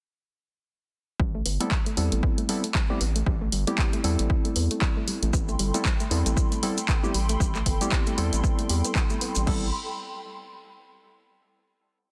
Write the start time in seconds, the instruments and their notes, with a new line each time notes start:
1.20 analog synth bass A1, synth arpeggio sound G3, kick
1.35 synth arpeggio sound A3
1.46 analog synth bass G1, synth arpeggio sound B3, open hi-hat
1.60 synth keys G3 B3 C4 E4 A4, synth arpeggio sound A3, closed hi-hat
1.71 synth arpeggio sound G3, kick, clap
1.86 synth arpeggio sound A3, closed hi-hat
1.97 analog synth bass E2, synth keys G3 B3 C4 E4 A4, synth arpeggio sound G3, open hi-hat
2.12 analog synth bass A1, synth arpeggio sound A3, closed hi-hat
2.23 synth arpeggio sound B3, kick
2.38 synth arpeggio sound A3, closed hi-hat
2.49 synth keys G3 B3 C4 E4 A4, synth arpeggio sound G3, open hi-hat
2.64 synth arpeggio sound A3, closed hi-hat
2.75 synth arpeggio sound G3, kick, clap
2.90 synth keys G3 B3 C4 E4 G4, synth arpeggio sound A3
3.01 analog synth bass A1, synth arpeggio sound B3, open hi-hat
3.16 synth arpeggio sound A3, closed hi-hat
3.26 analog synth bass A1, synth arpeggio sound G3, kick
3.41 synth arpeggio sound A3
3.52 analog synth bass G1, synth arpeggio sound G3, open hi-hat
3.67 synth keys G3 B3 C4 E4 G4, synth arpeggio sound A3, closed hi-hat
3.78 synth arpeggio sound B3, kick, clap
3.93 synth arpeggio sound A3, closed hi-hat
4.04 analog synth bass E2, synth keys G3 B3 C4 E4 A4, synth arpeggio sound G3, open hi-hat
4.19 analog synth bass A1, synth arpeggio sound A3, closed hi-hat
4.30 synth arpeggio sound G3, kick
4.45 synth arpeggio sound A3, closed hi-hat
4.56 analog synth bass E2, synth arpeggio sound B3, open hi-hat
4.71 synth arpeggio sound A3, closed hi-hat
4.82 synth arpeggio sound G3, kick, clap
4.97 synth arpeggio sound A3
5.08 synth arpeggio sound G3, open hi-hat
5.22 analog synth bass A1, synth arpeggio sound A3, closed hi-hat
5.33 analog synth bass A1, synth arpeggio sound B3, analog synth pad A4 G5 B5 C6, kick, maracas
5.48 synth arpeggio sound A3, maracas
5.59 analog synth bass G1, synth arpeggio sound G3, open hi-hat
5.74 synth keys G3 B3 C4 E4 A4, synth arpeggio sound A3, closed hi-hat, maracas
5.85 synth arpeggio sound G3, kick, clap, maracas
6.00 synth arpeggio sound A3, closed hi-hat, maracas
6.11 analog synth bass E2, synth keys G3 B3 C4 E4 A4, synth arpeggio sound B3, open hi-hat
6.26 analog synth bass A1, synth arpeggio sound A3, closed hi-hat, maracas
6.37 synth arpeggio sound G3, kick, maracas
6.52 synth arpeggio sound A3, closed hi-hat, maracas
6.63 synth keys G3 B3 C4 E4 A4, synth arpeggio sound G3, open hi-hat
6.78 synth arpeggio sound A3, closed hi-hat, maracas
6.88 synth arpeggio sound B3, kick, clap, maracas
7.03 synth keys G3 B3 C4 E4 G4, synth arpeggio sound A3, maracas
7.14 analog synth bass A1, synth arpeggio sound G3, open hi-hat
7.29 synth arpeggio sound A3, closed hi-hat, maracas
7.40 analog synth bass A1, synth arpeggio sound G3, kick, maracas
7.55 synth arpeggio sound A3, clap, maracas
7.66 analog synth bass G1, synth arpeggio sound B3, kick, open hi-hat
7.81 synth keys G3 B3 C4 E4 G4, synth arpeggio sound A3, closed hi-hat, maracas
7.91 synth arpeggio sound G3, kick, clap, maracas
8.07 synth arpeggio sound A3, closed hi-hat, maracas
8.17 analog synth bass E2, synth keys G3 B3 C4 E4 A4, synth arpeggio sound G3, open hi-hat
8.33 analog synth bass A1, synth arpeggio sound A3, closed hi-hat, maracas
8.44 synth arpeggio sound B3, kick, maracas
8.59 synth arpeggio sound A3, closed hi-hat, maracas
8.69 analog synth bass E2, synth arpeggio sound G4, open hi-hat
8.85 synth arpeggio sound B3, closed hi-hat, maracas
8.95 synth arpeggio sound B3, kick, clap, maracas
9.10 synth arpeggio sound A3, closed hi-hat, maracas
9.21 synth arpeggio sound B3, open hi-hat
9.35 analog synth bass A1, synth arpeggio sound G3, closed hi-hat, maracas
9.46 analog synth bass A1, synth keys G3 B3 C4 E4 A4, synth arpeggio sound G3, analog synth pad A4 G5 B5 C6, kick, crash